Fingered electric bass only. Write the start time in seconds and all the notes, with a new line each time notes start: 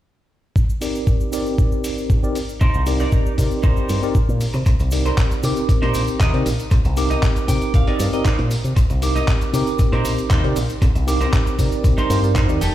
2.61 C2
2.74 C2
3.38 C3
3.64 C2
3.90 G2
4.29 A#2
4.54 C3
4.66 C2
4.80 C2
5.43 C3
5.69 muted fingered electric bass stroke
5.82 A#2
5.95 A#1
6.08 muted fingered electric bass stroke
6.20 D#2
6.34 C3
6.46 A#1
6.71 C2
6.85 C2
7.48 C3
7.74 C2
7.99 G2
8.39 A#2
8.64 C3
8.76 C2
8.90 C2
9.53 C3
9.79 muted fingered electric bass stroke
9.92 A#2
10.05 A#1
10.31 D#2
10.44 C3
10.56 A#1
10.82 C2
10.95 C2
11.59 C3
11.84 C2
12.10 G2
12.49 D#2
12.61 F1